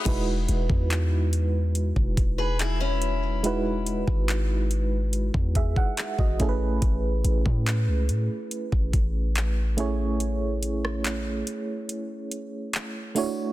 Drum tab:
CC |x---------------|----------------|----------------|----------------|
HH |x-x-x-x-x-x-x-x-|x-x-x-x-x-x-x-x-|x-x-x-x-x-x-x-x-|x-x-x-x-x-x-x-o-|
CP |----x-------x---|----x-------x---|----x-------x---|----x-------x---|
SD |----------------|----------------|----------------|---r------------|
BD |o--o-----oo-----|---o-----ooo-oo-|o--o-----oo-----|----------------|